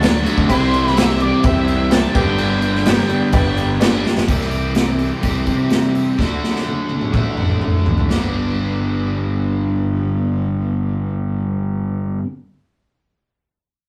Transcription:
Already playing: picked electric bass D2, overdriven electric guitar D3 F#3 A3 D4 F#4, lead electric guitar A5
0.00 distorted electric guitar D3 F#3 A3, honky-tonk piano F#4 A4 D5 F#5, snare, tambourine, crash
0.05 distorted electric guitar D4
0.24 overdriven electric guitar D3 F#4, distorted electric guitar F#3 A3 D4, tambourine, crash
0.38 picked electric bass D2, kick
0.48 picked electric bass C2, distorted electric guitar C3 G3 C4 E4, overdriven electric guitar E3 G4, honky-tonk piano G4 C5 E5 G5, lead electric guitar C5, kick, tambourine, crash
0.71 distorted electric guitar G3 C4 E4, tambourine, crash
0.87 lead electric guitar B4, snare
0.95 distorted electric guitar C3 G3 C4 E4, honky-tonk piano G4 C5 E5 G5, lead electric guitar E5, snare, tambourine, crash
1.10 snare
1.19 distorted electric guitar C3 G3 C4 E4, lead electric guitar D5, crash
1.43 picked electric bass C2, distorted electric guitar C3 G3 C4, honky-tonk piano G4 C5 E5 G5, lead electric guitar E5, kick, tambourine, crash
1.47 distorted electric guitar E4
1.67 distorted electric guitar G3 C4 E4, tambourine, crash
1.90 distorted electric guitar C3 G3 C4, honky-tonk piano G4 C5 E5 G5, lead electric guitar A5, snare, tambourine, crash
1.95 distorted electric guitar E4
2.13 picked electric bass G1, overdriven electric guitar G2 G4, distorted electric guitar G3 B3 D4, honky-tonk piano G4 B4 D5 G5, lead electric guitar G5, kick, tambourine, crash
2.17 distorted electric guitar G2 D3
2.38 distorted electric guitar G2 D3 G3 B3 D4, tambourine, crash
2.62 distorted electric guitar G3 B3 D4, tambourine, crash
2.75 snare
2.85 distorted electric guitar D3 G3 B3 D4, honky-tonk piano G4 B4 D5 G5, snare, tambourine, crash
2.99 snare
3.09 distorted electric guitar G2 D3 G3 B3 D4, crash
3.32 picked electric bass G1, distorted electric guitar D3 G3 B3 D4, honky-tonk piano G4 B4 D5 G5, kick, tambourine, crash
3.56 distorted electric guitar G3 B3 D4, tambourine, crash
3.80 distorted electric guitar G2 D3 G3 B3, honky-tonk piano G4 B4 D5 G5, overdriven electric guitar G4, snare, tambourine, crash
3.84 distorted electric guitar D4
4.04 distorted electric guitar G3 B3 D4, snare, tambourine
4.17 picked electric bass G1, snare
4.28 picked electric bass C2, distorted electric guitar C3 G3 C4 E4, overdriven electric guitar E3, kick, open hi-hat
4.32 distorted electric guitar G4
4.41 snare
4.51 open hi-hat
4.75 snare, open hi-hat
4.99 distorted electric guitar G3 C4 E4 G4, open hi-hat
5.03 distorted electric guitar C3
5.22 picked electric bass C2, overdriven electric guitar C3 E3 G3 C4 G4, kick, open hi-hat
5.47 picked electric bass C3, kick, open hi-hat
5.70 snare, open hi-hat
5.95 open hi-hat
6.18 picked electric bass D2, distorted electric guitar D3 F#3 A3 D4 F#4, kick, snare
6.44 snare
6.56 snare
6.66 high tom
6.89 distorted electric guitar F#3 A3 D4 F#4, high tom
6.94 distorted electric guitar D3
7.01 mid tom
7.13 picked electric bass A1, overdriven electric guitar D3 A3 D4 F#4, kick, mid tom
7.37 mid tom
7.49 mid tom
7.61 mid tom
7.86 picked electric bass A1, floor tom
7.98 floor tom
8.09 picked electric bass G1, distorted electric guitar G2 D3 G3 B3, overdriven electric guitar G4, snare
8.13 distorted electric guitar D4

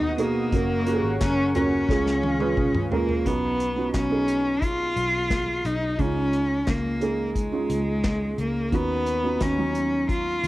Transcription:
Already playing: picked electric bass D#2, felt piano B3 D#4 F#4 G#4 B4, cello D#4, analog synth pad F#4 D#5 F#5 D#6
0.01 floor tom
0.18 felt piano B2 D#4 F#4 G#4, cello A#3, closed hi-hat
0.52 picked electric bass F#1, felt piano A#3 C#4 F#4 A#4, analog synth pad A#4 C#5 F#5 C#6, kick, closed hi-hat
0.86 felt piano A#3 C#4 F#4 G4, closed hi-hat
0.94 felt piano G#4
1.03 picked electric bass G#1
1.21 picked electric bass F#1, cello C#4, kick, snare, clap, closed hi-hat
1.54 felt piano A#3 C#4 F#4 A#4, cello C#4, closed hi-hat, floor tom
1.89 picked electric bass C#2, felt piano C#3 G#3 C#4 F4 G#4, analog synth pad G#4 F5, kick, snare
2.06 snare
2.23 high tom
2.40 felt piano G#3 C#4 F4 B4, high tom
2.57 kick, mid tom
2.75 mid tom
2.91 felt piano G#3 C#4 F4 A#4, cello A#3, floor tom
3.09 floor tom
3.25 picked electric bass B1, felt piano B2 B3 C#4 D#4 F#4, cello B3, kick, closed hi-hat
3.60 closed hi-hat
3.76 felt piano B3 C#4 D#4 F#4
3.94 picked electric bass B1, cello C#4, kick, snare, clap, closed hi-hat
4.10 felt piano B3 C#4 D#4 G#4
4.28 closed hi-hat
4.62 cello F4, kick, closed hi-hat
4.96 picked electric bass B1, closed hi-hat
5.30 kick, snare, clap, closed hi-hat
5.65 picked electric bass B1, cello D#4, closed hi-hat
5.98 picked electric bass C#2, felt piano C#3 G#3 C#4 D#4 F4, cello C#4, kick, closed hi-hat
6.33 closed hi-hat
6.67 picked electric bass C#2, cello A#3, kick, snare, clap, closed hi-hat
7.01 felt piano G#3 C#4 D#4 G#4, closed hi-hat
7.35 cello G#3, kick, closed hi-hat
7.52 felt piano G#3 C#4 D#4 F4
7.70 picked electric bass C#2, closed hi-hat
8.04 kick, snare, clap, closed hi-hat
8.38 picked electric bass C#2, cello A#3, closed hi-hat
8.72 picked electric bass D#2, felt piano D#3 B3 C#4 D#4 F#4, cello B3, kick, closed hi-hat
9.06 closed hi-hat
9.23 felt piano B3 C#4 D#4 F#4
9.41 picked electric bass D#2, cello C#4, kick, snare, clap, closed hi-hat
9.57 felt piano F#3 B3 C#4 D#4
9.75 closed hi-hat
10.09 cello F4, kick, closed hi-hat
10.44 picked electric bass D#2, closed hi-hat

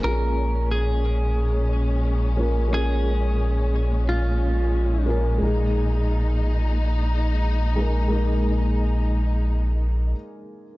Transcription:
0.00 analog synth bass A#1, string section A#2 G#3 C#4, felt piano A#3 C#4
0.04 felt piano F4 G#4, clean electric guitar A#4
0.71 clean electric guitar G#4
2.37 felt piano A#3 C#4 F4 A#4
2.68 felt piano A#3 C#4
2.74 felt piano F4 G#4, clean electric guitar G#4
4.09 clean electric guitar F4
5.06 felt piano A#3 C#4 F4 A#4
5.37 analog synth bass A#1, felt piano G#3 A#3
5.43 felt piano D#4 G#4, string section D#4
7.76 felt piano G#3 A#3 D#4 A#4
8.07 felt piano G#3 A#3
8.13 felt piano D#4 G#4

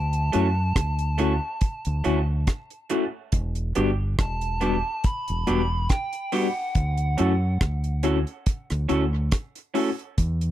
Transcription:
Already playing: fingered electric bass D2, soft synth lead A5
0.13 closed hi-hat
0.32 fingered electric bass F#2, clean electric guitar A3 C#4 F#4, tine electric piano A3 C#4 E4 F#4, closed hi-hat
0.76 fingered electric bass D2, kick, cross-stick, closed hi-hat
0.99 closed hi-hat
1.18 clean electric guitar A3 C#4 F#4, tine electric piano A3 C#4 E4 F#4, closed hi-hat
1.61 kick, closed hi-hat
1.85 fingered electric bass D2, closed hi-hat
2.04 fingered electric bass D2, clean electric guitar A3 C#4 F#4, tine electric piano A3 C#4 E4 F#4, closed hi-hat
2.47 kick, cross-stick, closed hi-hat
2.70 closed hi-hat
2.90 clean electric guitar A3 C#4 F#4, tine electric piano A3 C#4 E4 F#4, closed hi-hat
3.32 fingered electric bass E1, kick, closed hi-hat
3.55 closed hi-hat
3.75 fingered electric bass G1, tine electric piano G3 B3 D4 F#4, clean electric guitar B3 D4 G4, closed hi-hat
4.19 fingered electric bass E1, soft synth lead A5, kick, cross-stick, closed hi-hat
4.41 closed hi-hat
4.61 tine electric piano G3 B3 D4 F#4, clean electric guitar B3 D4 G4, closed hi-hat
5.04 soft synth lead B5, kick, closed hi-hat
5.28 fingered electric bass E1, closed hi-hat
5.47 fingered electric bass E1, tine electric piano G3 B3 D4 F#4, clean electric guitar B3 D4 G4, closed hi-hat
5.89 soft synth lead G5, kick, cross-stick, closed hi-hat
6.13 closed hi-hat
6.32 tine electric piano G3 B3 D4 F#4, clean electric guitar B3 D4 G4, soft synth lead F#5, open hi-hat
6.75 fingered electric bass D2, kick, closed hi-hat
6.97 closed hi-hat
7.18 fingered electric bass F#2, tine electric piano A3 C#4 E4 F#4, clean electric guitar C#4 F#4 A4, closed hi-hat
7.61 fingered electric bass D2, kick, cross-stick, closed hi-hat
7.84 closed hi-hat
8.03 tine electric piano A3 C#4 E4 F#4, clean electric guitar C#4 F#4 A4, closed hi-hat
8.27 closed hi-hat
8.46 kick, closed hi-hat
8.70 fingered electric bass D2, cross-stick, closed hi-hat
8.89 fingered electric bass D2, tine electric piano A3 C#4 E4 F#4, clean electric guitar C#4 F#4 A4, closed hi-hat
9.31 kick, cross-stick, closed hi-hat
9.55 closed hi-hat
9.74 tine electric piano A3 C#4 E4 F#4, clean electric guitar C#4 F#4 A4, open hi-hat
9.99 closed hi-hat
10.18 fingered electric bass E2, kick, closed hi-hat
10.41 closed hi-hat

